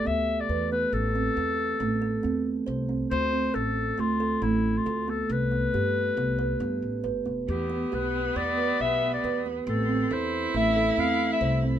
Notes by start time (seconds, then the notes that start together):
0.05 D2 B3 E5
0.40 D5
0.49 E2 B4
0.72 B3 B4
0.93 A1 A4
1.15 C4
1.37 E2 A4
1.80 A1 A3
2.02 A4
2.23 E2 C4
2.66 C2 C5
2.89 C4
3.11 D2 C5
3.32 C4
3.54 A1 A4
3.98 D2 A3 F4
4.20 A4
4.42 A1 A3 E4
4.77 F4
4.86 D2 A4
5.08 B3 A4
5.30 C2 B4
5.51 B3
5.74 G2 G4
6.17 C2 B3
6.39 B4
6.60 G2 B3
6.82 A1
7.04 G1 B4
7.26 E1 B3
7.48 E2 B3 G4
7.70 B3
7.92 B1 G4 B4
8.36 E2 B3 D5
8.58 B4
8.80 B1 B3 E5
9.13 D5
9.24 E2 B4
9.46 B3
9.67 A1 C4 A4
9.89 C4
10.10 E2 E4 A4 C5
10.54 A1 A3 E5
10.76 A4
10.97 E2 C4 F5
11.33 E5
11.41 C2 C5
11.64 C4